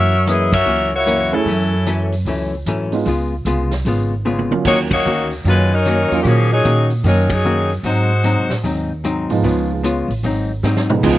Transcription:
Already playing: hollow-body jazz guitar F#2 E3 A#3 C#4, upright bass F#2, saxophone section C#4 F#4 A#4 E5
0.27 hollow-body jazz guitar F#2 E3 A#3 C#4, saxophone section B3 E4 G#4 D#5, closed hi-hat
0.53 saxophone section C#4 F#4 A#4 E5, kick, ride
0.65 upright bass C#2, hollow-body jazz guitar F#2 E3 A#3 C#4
0.95 saxophone section A#3 E4 F#4 C#5
1.06 hollow-body jazz guitar F#2 E3 A#3 C#4, closed hi-hat
1.32 upright bass E2, saxophone section F#3 C#4 E4 A4, grand piano A3 C#4 E4 G#4
1.45 upright bass F#2, hollow-body jazz guitar F#2 E3 A3 C#4, open hi-hat
1.86 hollow-body jazz guitar F#2 E3 A3 C#4, closed hi-hat
2.12 open hi-hat
2.25 upright bass C#2, hollow-body jazz guitar F#2 E3 A3 C#4, open hi-hat
2.66 hollow-body jazz guitar F#2 E3 A3 C#4, upright bass G#2, closed hi-hat
2.92 grand piano G#3 B3 D#4 F4, open hi-hat
3.05 upright bass C#2, hollow-body jazz guitar C#3 G#3 B3 F4, open hi-hat
3.45 upright bass C2, hollow-body jazz guitar C#3 G#3 B3 F4, closed hi-hat
3.71 snare, open hi-hat
3.85 upright bass G#1, hollow-body jazz guitar C#3 G#3 B3 F4, open hi-hat
4.25 hollow-body jazz guitar C#3 G#3 B3 F4, high tom
4.39 high tom
4.51 upright bass C#2, grand piano F#3 A#3 C#4 F4, high tom
4.65 upright bass D#2, hollow-body jazz guitar D#3 A#3 C#4 F#4, saxophone section A#3 D#4 F#4 C#5, kick, crash
4.91 saxophone section A#3 D#4 F#4 C#5, kick, ride
5.05 upright bass D2, hollow-body jazz guitar D#3 A#3 C#4 F#4
5.31 open hi-hat
5.44 upright bass F#2, hollow-body jazz guitar D#3 A#3 C#4 F#4, saxophone section G#3 C#4 F4 B4, open hi-hat
5.73 saxophone section F#3 C#4 D#4 A#4
5.85 hollow-body jazz guitar D#3 A#3 C#4 F#4, closed hi-hat
6.11 upright bass E2, grand piano F#3 A#3 C#4 F4, open hi-hat
6.22 upright bass A#2, hollow-body jazz guitar D#3 A#3, saxophone section G4, open hi-hat
6.27 saxophone section F3 A#3 C#4 G#4, hollow-body jazz guitar C#4 F#4
6.52 saxophone section F#3 C#4 D#4 G#4
6.64 upright bass A#2, hollow-body jazz guitar D#3 A#3 C#4 F#4, closed hi-hat
6.90 open hi-hat
7.04 upright bass F#2, hollow-body jazz guitar D#3 A#3 C#4 F#4, saxophone section F#3 C#4 D#4 A#4, open hi-hat
7.30 saxophone section F#3 C#4 D#4 G#4, kick, ride
7.45 hollow-body jazz guitar D#3 A#3 C#4 F#4
7.70 open hi-hat
7.83 upright bass G#2, hollow-body jazz guitar G#2 F#3 C4 D#4, saxophone section G#3 D#4 F#4 C5, open hi-hat
8.24 hollow-body jazz guitar G#2 F#3 C4 D#4, closed hi-hat
8.37 upright bass C3
8.50 upright bass A2, snare, open hi-hat
8.64 upright bass D#2, hollow-body jazz guitar G#2 F#3 C4 D#4, open hi-hat
9.04 hollow-body jazz guitar G#2 F#3 C4 D#4, closed hi-hat
9.29 upright bass G#2, grand piano F3 G#3 B3 D#4, open hi-hat
9.43 upright bass C#2, hollow-body jazz guitar C#3 G#3 B3 F4, open hi-hat
9.84 hollow-body jazz guitar C#3 G#3 B3 F4, closed hi-hat
10.08 upright bass A1, open hi-hat
10.23 upright bass G#1, hollow-body jazz guitar G#2 F#3 C4 D#4, open hi-hat
10.63 upright bass G#2, hollow-body jazz guitar G#2 F#3 C4 D#4, snare
10.76 snare
10.90 grand piano C#2 F3 G#3 B3 D#4, mid tom
11.03 upright bass C#2, saxophone section C#3 G#3 B3 F4, hollow-body jazz guitar C#3 G#3 B3 F4, grand piano F3 B3 D#4, kick, crash

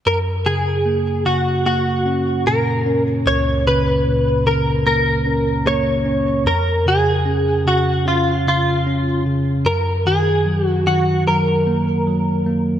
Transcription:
0.06 tine electric piano F#2, clean electric guitar A#4
0.46 tine electric piano C#3, clean electric guitar G#4
0.86 tine electric piano A#3
1.26 tine electric piano C#3, clean electric guitar F#4
1.66 tine electric piano A#3, clean electric guitar F#4
2.06 tine electric piano C#4
2.46 tine electric piano A#2, clean electric guitar A#4
2.86 tine electric piano C#4
3.26 tine electric piano C#2, clean electric guitar C#5
3.66 tine electric piano C#3, clean electric guitar B4
4.07 tine electric piano A#2
4.46 tine electric piano C#3, clean electric guitar A#4
4.86 tine electric piano A#3, clean electric guitar A#4
5.26 tine electric piano C#4
5.65 tine electric piano A#3, clean electric guitar C#5
6.06 tine electric piano C#4
6.45 tine electric piano F2, clean electric guitar A#4
6.86 tine electric piano C#3, clean electric guitar G#4
7.26 tine electric piano C#4
7.66 tine electric piano C#3, clean electric guitar F#4
8.06 tine electric piano C#4, clean electric guitar F4
8.46 tine electric piano C#3, clean electric guitar F4
8.87 tine electric piano C#4
9.26 tine electric piano C#3
9.65 tine electric piano F#2, clean electric guitar A#4
10.06 tine electric piano D#3, clean electric guitar G#4
10.46 tine electric piano F#3
10.67 clean electric guitar F#4
10.87 tine electric piano D#3, clean electric guitar F#4
11.27 tine electric piano F#3, clean electric guitar A#4
11.67 tine electric piano A#3
12.07 tine electric piano F#3
12.46 tine electric piano A#3

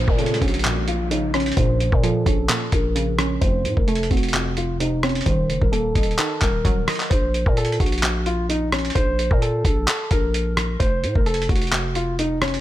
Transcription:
Already playing: synth pluck A#2, downlifter
0.08 808-style bass A#2, grand piano A#4, kick
0.19 synth pluck C#3, grand piano A4, closed hi-hat
0.26 closed hi-hat
0.34 closed hi-hat
0.42 808-style bass A#1, synth pluck C#4, grand piano F#4, kick, closed hi-hat
0.48 closed hi-hat
0.54 closed hi-hat
0.59 closed hi-hat
0.65 synth pluck A#2, cross-stick, clap, closed hi-hat
0.88 grand piano F4, closed hi-hat
1.11 synth pluck C#3, grand piano D#4, closed hi-hat
1.34 synth pluck C#4, grand piano C#4, cross-stick, closed hi-hat
1.40 closed hi-hat
1.46 closed hi-hat
1.52 closed hi-hat
1.57 808-style bass A#1, synth pluck A#2, grand piano C5, kick, closed hi-hat
1.80 closed hi-hat
1.92 808-style bass A#2, grand piano A#4, kick
2.03 synth pluck F3, grand piano A4, closed hi-hat
2.26 808-style bass A#1, synth pluck C#4, kick, closed hi-hat
2.49 synth pluck A#2, cross-stick, clap, closed hi-hat
2.72 808-style bass A#1, grand piano A#4, kick, closed hi-hat
2.95 synth pluck C#3, closed hi-hat
3.19 synth pluck C#4, cross-stick, closed hi-hat
3.41 808-style bass F1, synth pluck F2, grand piano C5, kick, closed hi-hat
3.65 808-style bass A2, closed hi-hat
3.77 808-style bass F1, grand piano A#4, kick
3.88 synth pluck A3, grand piano A4, closed hi-hat
3.95 closed hi-hat
4.03 closed hi-hat
4.11 808-style bass F1, synth pluck C4, grand piano F#4, kick, closed hi-hat
4.17 closed hi-hat
4.23 closed hi-hat
4.29 closed hi-hat
4.34 synth pluck F2, cross-stick, clap, closed hi-hat
4.57 grand piano F4, closed hi-hat
4.80 synth pluck C3, grand piano D#4, closed hi-hat
5.03 synth pluck C4, grand piano C#4, cross-stick, closed hi-hat
5.09 closed hi-hat
5.15 closed hi-hat
5.21 closed hi-hat
5.26 808-style bass D#1, synth pluck D#3, grand piano C5, kick, closed hi-hat
5.49 808-style bass F#1, closed hi-hat
5.62 808-style bass D#1, grand piano A#4, kick
5.72 synth pluck A#3, grand piano A4, closed hi-hat
5.95 808-style bass D#1, synth pluck D#5, kick, closed hi-hat
6.03 closed hi-hat
6.11 closed hi-hat
6.19 synth pluck D#3, cross-stick, clap, closed hi-hat
6.41 808-style bass D#1, grand piano A#4, kick, clap, closed hi-hat
6.65 808-style bass D#1, synth pluck F#3, kick, closed hi-hat
6.88 synth pluck D#5, cross-stick, closed hi-hat, open hi-hat
6.95 closed hi-hat
7.00 clap, closed hi-hat
7.10 808-style bass A#1, grand piano C5, kick, closed hi-hat
7.34 closed hi-hat
7.46 808-style bass A#2, grand piano A#4, kick
7.57 grand piano A4, closed hi-hat
7.65 closed hi-hat
7.72 closed hi-hat
7.80 808-style bass A#1, grand piano F#4, kick, closed hi-hat
7.86 closed hi-hat
7.92 closed hi-hat
7.98 closed hi-hat
8.03 cross-stick, clap, closed hi-hat
8.26 grand piano F4, closed hi-hat
8.49 grand piano D#4, closed hi-hat
8.72 grand piano C#4, cross-stick, closed hi-hat
8.79 closed hi-hat
8.85 closed hi-hat
8.90 closed hi-hat
8.95 808-style bass A#1, grand piano C5, kick, closed hi-hat
9.19 closed hi-hat
9.31 808-style bass A#2, grand piano A#4, kick
9.42 grand piano A4, closed hi-hat
9.65 808-style bass A#1, kick, closed hi-hat
9.88 cross-stick, clap, closed hi-hat
10.11 808-style bass A#1, grand piano A#4, kick, closed hi-hat
10.34 closed hi-hat
10.57 cross-stick, closed hi-hat
10.80 808-style bass F1, grand piano C5, kick, closed hi-hat
11.03 808-style bass A2, closed hi-hat
11.15 808-style bass F1, grand piano A#4, kick
11.26 grand piano A4, closed hi-hat
11.34 closed hi-hat
11.42 closed hi-hat
11.49 808-style bass F1, grand piano F#4, kick, closed hi-hat
11.55 closed hi-hat
11.62 closed hi-hat
11.67 closed hi-hat
11.72 cross-stick, clap, closed hi-hat
11.95 grand piano F4, closed hi-hat
12.19 grand piano D#4, closed hi-hat
12.42 grand piano C#4, cross-stick, closed hi-hat
12.48 closed hi-hat
12.54 closed hi-hat

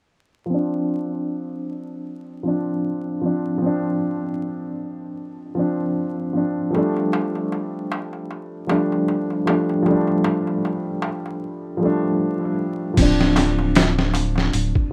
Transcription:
0.46 upright piano F3
0.50 upright piano C4
0.54 upright piano D4
2.43 upright piano F3 C4
2.48 upright piano D4
3.21 upright piano F3 C4
3.26 upright piano D4
3.58 upright piano F3
3.62 upright piano C4
3.66 upright piano D4
5.55 upright piano F3 C4
5.59 upright piano D4
6.33 upright piano F3 C4 D4
6.70 upright piano F3 G3
6.75 upright piano A3 D4, darbuka tek
6.97 darbuka tek
7.13 darbuka tek
7.35 darbuka tek
7.52 darbuka tek
7.92 darbuka tek
8.13 darbuka tek
8.31 darbuka tek
8.67 upright piano F3 G3 A3, darbuka tek
8.71 upright piano D4
8.92 darbuka tek
9.08 darbuka tek
9.30 darbuka tek
9.46 upright piano F3 G3 A3 D4, darbuka tek
9.69 darbuka tek
9.82 upright piano F3 G3, darbuka tek
9.88 upright piano A3 D4
10.07 darbuka tek
10.24 darbuka tek
10.47 darbuka tek
10.65 darbuka tek
11.02 darbuka tek
11.26 darbuka tek
11.77 upright piano F3 G3
11.83 upright piano A3 D4
12.94 upright piano F3, kick, open hi-hat, crash, darbuka tek
12.98 analog synth bass D1, upright piano C4
13.02 upright piano D4
13.21 snare
13.36 snare, open hi-hat, darbuka tek
13.59 darbuka tek
13.75 snare, open hi-hat, darbuka tek
13.99 snare
14.14 open hi-hat, darbuka tek
14.36 snare, darbuka tek
14.53 analog synth bass D1, open hi-hat, darbuka tek
14.75 kick

